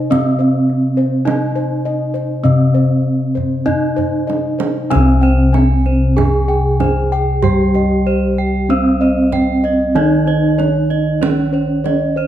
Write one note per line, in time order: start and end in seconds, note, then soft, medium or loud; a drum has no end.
0.00 0.11 C3 medium
0.00 1.23 C3 medium
0.00 0.11 D#4 medium
0.00 0.15 C5 medium
0.10 2.44 C3 medium
0.10 1.26 C4 medium
0.10 3.62 C4 soft
0.10 0.43 D#5 medium
0.10 kendang high soft
0.10 kendang low medium
0.39 0.72 C5 medium
0.39 kendang slap soft
0.69 kendang slap soft
0.97 1.30 C5 medium
0.97 kendang slap soft
1.25 1.35 C#4 soft
1.25 2.44 D#4 medium
1.25 1.59 D#5 medium
1.25 kendang slap soft
1.25 kendang high medium
1.56 1.89 C5 medium
1.85 2.18 D#5 medium
1.85 kendang slap soft
2.14 2.48 C5 medium
2.14 kendang slap soft
2.44 6.13 C3 medium
2.44 4.90 C3 medium
2.44 3.65 C4 medium
2.44 2.78 D#5 medium
2.44 kendang slap soft
2.44 kendang low medium
2.74 3.08 C5 medium
3.35 3.69 C5 medium
3.35 kendang low soft
3.66 3.74 C#4 medium
3.66 4.90 D#4 medium
3.66 4.00 D#5 medium
3.66 kendang low soft
3.96 4.31 C5 medium
3.96 kendang low soft
4.27 4.62 D#5 medium
4.27 kendang high soft
4.59 4.94 C5 medium
4.59 kendang high medium
4.90 7.43 C3 medium
4.90 6.17 C4 medium
4.90 8.65 C4 medium
4.90 5.20 C5 medium
4.90 5.26 G#5 medium
4.90 kendang high medium
4.95 12.27 C2 medium
5.21 5.52 C5 medium
5.21 5.57 G5 medium
5.21 kendang slap soft
5.53 5.88 G#5 medium
5.53 5.84 G#5 medium
5.53 kendang high medium
5.86 6.15 C5 medium
5.86 kendang slap soft
6.17 6.25 C#4 soft
6.17 7.43 G#4 medium
6.17 6.46 G#5 medium
6.17 kendang slap soft
6.17 kendang high medium
6.17 kendang low medium
6.48 6.84 G5 medium
6.48 6.78 G#5 medium
6.80 7.10 C5 medium
6.80 7.15 G#5 medium
6.80 kendang slap soft
6.80 kendang high medium
6.80 kendang low soft
7.12 7.47 G5 medium
7.12 7.41 G5 medium
7.43 9.95 G3 medium
7.43 8.69 G4 medium
7.43 7.79 C5 medium
7.43 7.73 G5 medium
7.43 kendang low medium
7.75 8.10 D#5 medium
7.75 8.04 G5 medium
7.75 kendang slap soft
8.06 8.41 C5 medium
8.06 8.36 C5 medium
8.38 8.67 G5 medium
8.69 9.96 C4 loud
8.69 8.77 C#4 medium
8.69 8.99 C5 medium
8.69 kendang slap soft
9.01 9.31 C5 medium
9.01 9.36 D#5 medium
9.32 9.68 C5 medium
9.32 9.62 G5 medium
9.32 kendang slap soft
9.32 kendang low medium
9.64 9.99 D#5 medium
9.64 9.94 D#5 medium
9.64 kendang slap soft
9.95 12.27 D#3 medium
9.95 12.27 D#4 medium
9.95 11.22 D#4 medium
9.95 10.30 C#5 medium
9.95 10.25 D#5 medium
9.95 kendang high soft
10.27 10.62 C5 medium
10.27 10.56 D#5 medium
10.27 kendang slap soft
10.58 10.93 C#5 medium
10.58 10.88 C#5 medium
10.58 kendang high soft
10.90 11.19 D#5 medium
10.90 kendang slap soft
11.21 11.29 C#4 soft
11.21 12.27 C#4 medium
11.21 11.51 C#5 medium
11.21 kendang slap soft
11.21 kendang high medium
11.53 11.88 C5 medium
11.53 11.83 C#5 medium
11.84 12.20 C#5 medium
11.84 12.14 D#5 medium
11.84 kendang slap soft
11.84 kendang high soft
12.16 12.27 C5 medium